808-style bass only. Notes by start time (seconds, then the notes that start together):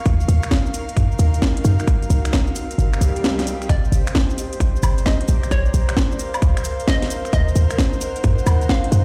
0.06 D#2
0.28 D#2
0.96 F#2
1.19 D#2
1.65 F#2
1.87 C2
2.10 C2
2.78 G1
3.01 C2
3.69 G1
3.92 G1
4.60 A#1
4.83 G1
5.29 A#1
5.51 A#1
5.74 A#1
6.42 C#2
7.33 D#2
7.56 D#2
8.24 F#2
8.46 D#2
8.92 F#2